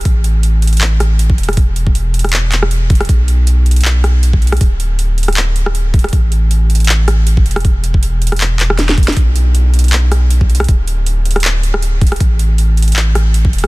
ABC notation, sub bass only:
X:1
M:4/4
L:1/8
Q:"Swing 16ths" 1/4=158
K:Emix
V:1 name="Sub bass" clef=bass
A,,,6- A,,, E,,,- | E,,,8 | B,,,8 | D,,,8 |
A,,,6- A,,, E,,,- | E,,,8 | B,,,8 | D,,,8 |
A,,,6- A,,, E,,, |]